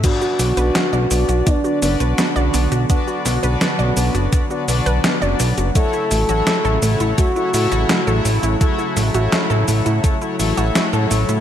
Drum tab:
CC |x---------------|----------------|----------------|----------------|
HH |x-oxx-oxx-oxx-ox|x-oxx-oxx-oxx-ox|x-oxx-oxx-oxx-ox|x-oxx-oxx-oxx-ox|
SH |xxxxxxxxxxxxxxxx|xxxxxxxxxxxxxxxx|xxxxxxxxxxxxxxxx|xxxxxxxxxxxxxxxx|
SD |----o-------o---|--o-o-------o---|----o-------o---|--o-o-------o---|
BD |o-------o-------|o-------o-------|o-------o-------|o-------o-------|